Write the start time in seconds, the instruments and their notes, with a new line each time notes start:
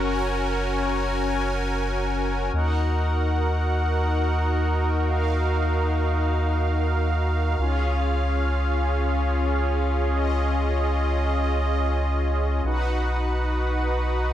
Already playing: analog synth bass F#1, analog synth pad C#4 F#4 A#4
0.01 analog synth pad G#5
2.54 analog synth bass D#2, analog synth pad D#4 F#4 A#4 F#5
5.07 analog synth pad F5
7.59 analog synth bass C#2, analog synth pad C#4 F4 G#4
10.11 analog synth pad D#5
12.64 analog synth bass B1, analog synth pad D#4 F#4 B4 F#5